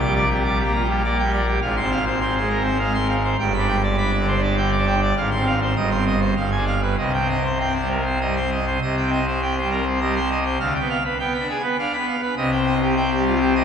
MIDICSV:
0, 0, Header, 1, 2, 480
1, 0, Start_track
1, 0, Key_signature, -3, "minor"
1, 0, Tempo, 589971
1, 1318, Time_signature, 3, 2, 24, 8
1, 4684, Tempo, 609756
1, 7564, Tempo, 591133
1, 10997, End_track
2, 0, Start_track
2, 0, Title_t, "Pipe organ"
2, 0, Program_c, 0, 19
2, 0, Note_on_c, 0, 34, 83
2, 0, Note_on_c, 0, 46, 85
2, 3, Note_on_c, 0, 86, 88
2, 43, Note_on_c, 0, 55, 62
2, 111, Note_off_c, 0, 86, 0
2, 126, Note_on_c, 0, 74, 75
2, 187, Note_off_c, 0, 55, 0
2, 233, Note_off_c, 0, 74, 0
2, 246, Note_on_c, 0, 67, 66
2, 353, Note_off_c, 0, 67, 0
2, 369, Note_on_c, 0, 55, 62
2, 370, Note_on_c, 0, 86, 74
2, 475, Note_off_c, 0, 86, 0
2, 487, Note_on_c, 0, 67, 67
2, 510, Note_off_c, 0, 55, 0
2, 529, Note_on_c, 0, 58, 64
2, 593, Note_off_c, 0, 67, 0
2, 610, Note_on_c, 0, 65, 57
2, 669, Note_off_c, 0, 58, 0
2, 688, Note_on_c, 0, 55, 65
2, 709, Note_off_c, 0, 65, 0
2, 731, Note_on_c, 0, 67, 62
2, 828, Note_off_c, 0, 55, 0
2, 834, Note_off_c, 0, 67, 0
2, 848, Note_on_c, 0, 74, 70
2, 849, Note_on_c, 0, 58, 64
2, 952, Note_off_c, 0, 74, 0
2, 966, Note_on_c, 0, 79, 72
2, 987, Note_off_c, 0, 58, 0
2, 1003, Note_on_c, 0, 55, 66
2, 1070, Note_off_c, 0, 79, 0
2, 1081, Note_on_c, 0, 74, 74
2, 1144, Note_off_c, 0, 55, 0
2, 1187, Note_off_c, 0, 74, 0
2, 1197, Note_on_c, 0, 67, 67
2, 1285, Note_off_c, 0, 34, 0
2, 1285, Note_off_c, 0, 46, 0
2, 1299, Note_off_c, 0, 67, 0
2, 1317, Note_on_c, 0, 44, 91
2, 1318, Note_on_c, 0, 32, 87
2, 1318, Note_on_c, 0, 77, 75
2, 1425, Note_off_c, 0, 77, 0
2, 1439, Note_on_c, 0, 84, 96
2, 1474, Note_on_c, 0, 60, 68
2, 1545, Note_off_c, 0, 84, 0
2, 1556, Note_on_c, 0, 77, 77
2, 1617, Note_off_c, 0, 60, 0
2, 1663, Note_off_c, 0, 77, 0
2, 1677, Note_on_c, 0, 72, 73
2, 1783, Note_off_c, 0, 72, 0
2, 1799, Note_on_c, 0, 84, 72
2, 1800, Note_on_c, 0, 60, 67
2, 1904, Note_off_c, 0, 84, 0
2, 1917, Note_on_c, 0, 72, 78
2, 1940, Note_off_c, 0, 60, 0
2, 1958, Note_on_c, 0, 56, 72
2, 2022, Note_off_c, 0, 72, 0
2, 2032, Note_on_c, 0, 70, 63
2, 2098, Note_off_c, 0, 56, 0
2, 2112, Note_on_c, 0, 60, 67
2, 2134, Note_off_c, 0, 70, 0
2, 2154, Note_on_c, 0, 72, 67
2, 2255, Note_off_c, 0, 60, 0
2, 2261, Note_off_c, 0, 72, 0
2, 2273, Note_on_c, 0, 77, 75
2, 2274, Note_on_c, 0, 56, 68
2, 2380, Note_off_c, 0, 77, 0
2, 2393, Note_on_c, 0, 84, 78
2, 2416, Note_off_c, 0, 56, 0
2, 2434, Note_on_c, 0, 60, 72
2, 2501, Note_off_c, 0, 84, 0
2, 2515, Note_on_c, 0, 77, 79
2, 2577, Note_off_c, 0, 60, 0
2, 2622, Note_off_c, 0, 77, 0
2, 2636, Note_on_c, 0, 72, 68
2, 2722, Note_off_c, 0, 44, 0
2, 2723, Note_off_c, 0, 32, 0
2, 2738, Note_off_c, 0, 72, 0
2, 2759, Note_on_c, 0, 31, 92
2, 2760, Note_on_c, 0, 79, 79
2, 2761, Note_on_c, 0, 43, 90
2, 2866, Note_off_c, 0, 79, 0
2, 2879, Note_on_c, 0, 83, 70
2, 2920, Note_on_c, 0, 62, 67
2, 2986, Note_off_c, 0, 83, 0
2, 2998, Note_on_c, 0, 79, 78
2, 3062, Note_off_c, 0, 62, 0
2, 3106, Note_off_c, 0, 79, 0
2, 3115, Note_on_c, 0, 74, 70
2, 3224, Note_off_c, 0, 74, 0
2, 3237, Note_on_c, 0, 83, 76
2, 3238, Note_on_c, 0, 62, 74
2, 3346, Note_off_c, 0, 83, 0
2, 3357, Note_on_c, 0, 74, 72
2, 3382, Note_off_c, 0, 62, 0
2, 3401, Note_on_c, 0, 50, 71
2, 3466, Note_off_c, 0, 74, 0
2, 3480, Note_on_c, 0, 72, 60
2, 3544, Note_off_c, 0, 50, 0
2, 3557, Note_on_c, 0, 62, 66
2, 3583, Note_off_c, 0, 72, 0
2, 3597, Note_on_c, 0, 74, 71
2, 3702, Note_off_c, 0, 62, 0
2, 3707, Note_off_c, 0, 74, 0
2, 3716, Note_on_c, 0, 50, 70
2, 3717, Note_on_c, 0, 79, 73
2, 3826, Note_off_c, 0, 79, 0
2, 3839, Note_on_c, 0, 86, 97
2, 3861, Note_off_c, 0, 50, 0
2, 3879, Note_on_c, 0, 62, 65
2, 3948, Note_off_c, 0, 86, 0
2, 3960, Note_on_c, 0, 79, 76
2, 4024, Note_off_c, 0, 62, 0
2, 4068, Note_off_c, 0, 79, 0
2, 4083, Note_on_c, 0, 74, 72
2, 4171, Note_off_c, 0, 31, 0
2, 4172, Note_off_c, 0, 43, 0
2, 4185, Note_off_c, 0, 74, 0
2, 4207, Note_on_c, 0, 32, 88
2, 4207, Note_on_c, 0, 77, 79
2, 4208, Note_on_c, 0, 44, 91
2, 4312, Note_off_c, 0, 77, 0
2, 4324, Note_on_c, 0, 84, 93
2, 4367, Note_on_c, 0, 60, 66
2, 4431, Note_off_c, 0, 84, 0
2, 4445, Note_on_c, 0, 77, 68
2, 4509, Note_off_c, 0, 60, 0
2, 4552, Note_off_c, 0, 77, 0
2, 4567, Note_on_c, 0, 72, 67
2, 4669, Note_off_c, 0, 72, 0
2, 4673, Note_off_c, 0, 32, 0
2, 4674, Note_off_c, 0, 44, 0
2, 4689, Note_on_c, 0, 31, 75
2, 4689, Note_on_c, 0, 43, 79
2, 4689, Note_on_c, 0, 75, 70
2, 4793, Note_off_c, 0, 75, 0
2, 4806, Note_on_c, 0, 84, 97
2, 4848, Note_on_c, 0, 60, 66
2, 4910, Note_off_c, 0, 84, 0
2, 4928, Note_on_c, 0, 75, 65
2, 4986, Note_off_c, 0, 60, 0
2, 5031, Note_off_c, 0, 75, 0
2, 5042, Note_on_c, 0, 72, 60
2, 5142, Note_off_c, 0, 72, 0
2, 5146, Note_off_c, 0, 43, 0
2, 5147, Note_off_c, 0, 31, 0
2, 5164, Note_on_c, 0, 77, 68
2, 5165, Note_on_c, 0, 31, 76
2, 5165, Note_on_c, 0, 43, 76
2, 5269, Note_off_c, 0, 77, 0
2, 5282, Note_on_c, 0, 80, 82
2, 5321, Note_on_c, 0, 62, 59
2, 5388, Note_off_c, 0, 80, 0
2, 5403, Note_on_c, 0, 77, 66
2, 5463, Note_off_c, 0, 62, 0
2, 5509, Note_off_c, 0, 77, 0
2, 5523, Note_on_c, 0, 71, 60
2, 5625, Note_off_c, 0, 71, 0
2, 5631, Note_off_c, 0, 31, 0
2, 5631, Note_off_c, 0, 43, 0
2, 5647, Note_on_c, 0, 75, 66
2, 5648, Note_on_c, 0, 36, 75
2, 5649, Note_on_c, 0, 48, 76
2, 5754, Note_off_c, 0, 75, 0
2, 5769, Note_on_c, 0, 79, 62
2, 5811, Note_on_c, 0, 60, 55
2, 5876, Note_off_c, 0, 79, 0
2, 5895, Note_on_c, 0, 75, 60
2, 5953, Note_off_c, 0, 60, 0
2, 6000, Note_off_c, 0, 75, 0
2, 6014, Note_on_c, 0, 72, 60
2, 6119, Note_off_c, 0, 72, 0
2, 6132, Note_on_c, 0, 60, 57
2, 6133, Note_on_c, 0, 79, 62
2, 6238, Note_off_c, 0, 79, 0
2, 6250, Note_on_c, 0, 72, 59
2, 6274, Note_off_c, 0, 60, 0
2, 6295, Note_on_c, 0, 55, 58
2, 6357, Note_off_c, 0, 72, 0
2, 6374, Note_on_c, 0, 70, 50
2, 6436, Note_off_c, 0, 55, 0
2, 6452, Note_on_c, 0, 60, 53
2, 6474, Note_off_c, 0, 70, 0
2, 6495, Note_on_c, 0, 72, 56
2, 6594, Note_off_c, 0, 60, 0
2, 6600, Note_off_c, 0, 72, 0
2, 6615, Note_on_c, 0, 55, 54
2, 6616, Note_on_c, 0, 75, 61
2, 6721, Note_off_c, 0, 75, 0
2, 6736, Note_on_c, 0, 84, 76
2, 6756, Note_off_c, 0, 55, 0
2, 6777, Note_on_c, 0, 60, 54
2, 6841, Note_off_c, 0, 84, 0
2, 6857, Note_on_c, 0, 75, 60
2, 6918, Note_off_c, 0, 60, 0
2, 6962, Note_off_c, 0, 75, 0
2, 6977, Note_on_c, 0, 72, 58
2, 7062, Note_off_c, 0, 36, 0
2, 7062, Note_off_c, 0, 48, 0
2, 7076, Note_off_c, 0, 72, 0
2, 7096, Note_on_c, 0, 36, 78
2, 7096, Note_on_c, 0, 48, 76
2, 7096, Note_on_c, 0, 75, 66
2, 7199, Note_off_c, 0, 75, 0
2, 7214, Note_on_c, 0, 79, 59
2, 7256, Note_on_c, 0, 60, 58
2, 7317, Note_off_c, 0, 79, 0
2, 7335, Note_on_c, 0, 75, 67
2, 7393, Note_off_c, 0, 60, 0
2, 7437, Note_off_c, 0, 75, 0
2, 7453, Note_on_c, 0, 72, 62
2, 7555, Note_off_c, 0, 72, 0
2, 7565, Note_on_c, 0, 60, 61
2, 7566, Note_on_c, 0, 79, 68
2, 7673, Note_off_c, 0, 79, 0
2, 7692, Note_on_c, 0, 72, 66
2, 7708, Note_off_c, 0, 60, 0
2, 7730, Note_on_c, 0, 55, 64
2, 7797, Note_off_c, 0, 72, 0
2, 7807, Note_on_c, 0, 70, 53
2, 7872, Note_off_c, 0, 55, 0
2, 7887, Note_on_c, 0, 60, 57
2, 7910, Note_off_c, 0, 70, 0
2, 7930, Note_on_c, 0, 72, 58
2, 8031, Note_off_c, 0, 60, 0
2, 8037, Note_off_c, 0, 72, 0
2, 8047, Note_on_c, 0, 75, 67
2, 8048, Note_on_c, 0, 55, 61
2, 8156, Note_off_c, 0, 75, 0
2, 8169, Note_on_c, 0, 84, 88
2, 8192, Note_off_c, 0, 55, 0
2, 8207, Note_on_c, 0, 60, 60
2, 8277, Note_off_c, 0, 84, 0
2, 8288, Note_on_c, 0, 75, 67
2, 8352, Note_off_c, 0, 60, 0
2, 8396, Note_off_c, 0, 75, 0
2, 8407, Note_on_c, 0, 72, 63
2, 8501, Note_off_c, 0, 36, 0
2, 8501, Note_off_c, 0, 48, 0
2, 8511, Note_off_c, 0, 72, 0
2, 8527, Note_on_c, 0, 38, 79
2, 8527, Note_on_c, 0, 77, 68
2, 8529, Note_on_c, 0, 50, 76
2, 8635, Note_off_c, 0, 77, 0
2, 8647, Note_on_c, 0, 79, 67
2, 8664, Note_off_c, 0, 38, 0
2, 8665, Note_off_c, 0, 50, 0
2, 8688, Note_on_c, 0, 59, 60
2, 8755, Note_off_c, 0, 79, 0
2, 8769, Note_on_c, 0, 77, 71
2, 8831, Note_off_c, 0, 59, 0
2, 8876, Note_off_c, 0, 77, 0
2, 8890, Note_on_c, 0, 71, 64
2, 8996, Note_off_c, 0, 71, 0
2, 9009, Note_on_c, 0, 59, 63
2, 9011, Note_on_c, 0, 79, 67
2, 9117, Note_off_c, 0, 79, 0
2, 9129, Note_on_c, 0, 71, 67
2, 9151, Note_off_c, 0, 59, 0
2, 9175, Note_on_c, 0, 62, 65
2, 9236, Note_off_c, 0, 71, 0
2, 9253, Note_on_c, 0, 68, 57
2, 9315, Note_off_c, 0, 62, 0
2, 9331, Note_on_c, 0, 59, 63
2, 9353, Note_off_c, 0, 68, 0
2, 9369, Note_on_c, 0, 71, 64
2, 9473, Note_off_c, 0, 59, 0
2, 9476, Note_off_c, 0, 71, 0
2, 9490, Note_on_c, 0, 62, 65
2, 9492, Note_on_c, 0, 77, 71
2, 9597, Note_off_c, 0, 77, 0
2, 9607, Note_on_c, 0, 83, 93
2, 9632, Note_off_c, 0, 62, 0
2, 9649, Note_on_c, 0, 59, 64
2, 9714, Note_off_c, 0, 83, 0
2, 9728, Note_on_c, 0, 77, 73
2, 9791, Note_off_c, 0, 59, 0
2, 9834, Note_off_c, 0, 77, 0
2, 9844, Note_on_c, 0, 71, 69
2, 9946, Note_off_c, 0, 71, 0
2, 9962, Note_on_c, 0, 36, 85
2, 9963, Note_on_c, 0, 48, 88
2, 9964, Note_on_c, 0, 75, 77
2, 10071, Note_off_c, 0, 75, 0
2, 10083, Note_on_c, 0, 79, 91
2, 10124, Note_on_c, 0, 60, 67
2, 10191, Note_off_c, 0, 79, 0
2, 10205, Note_on_c, 0, 75, 73
2, 10267, Note_off_c, 0, 60, 0
2, 10312, Note_off_c, 0, 75, 0
2, 10323, Note_on_c, 0, 67, 69
2, 10431, Note_off_c, 0, 67, 0
2, 10445, Note_on_c, 0, 60, 69
2, 10446, Note_on_c, 0, 79, 80
2, 10552, Note_off_c, 0, 79, 0
2, 10565, Note_on_c, 0, 67, 78
2, 10587, Note_off_c, 0, 60, 0
2, 10607, Note_on_c, 0, 55, 69
2, 10672, Note_off_c, 0, 67, 0
2, 10686, Note_on_c, 0, 65, 62
2, 10749, Note_off_c, 0, 55, 0
2, 10769, Note_on_c, 0, 60, 66
2, 10787, Note_off_c, 0, 65, 0
2, 10807, Note_on_c, 0, 67, 74
2, 10909, Note_off_c, 0, 60, 0
2, 10912, Note_off_c, 0, 67, 0
2, 10923, Note_on_c, 0, 55, 70
2, 10923, Note_on_c, 0, 75, 75
2, 10997, Note_off_c, 0, 36, 0
2, 10997, Note_off_c, 0, 48, 0
2, 10997, Note_off_c, 0, 55, 0
2, 10997, Note_off_c, 0, 75, 0
2, 10997, End_track
0, 0, End_of_file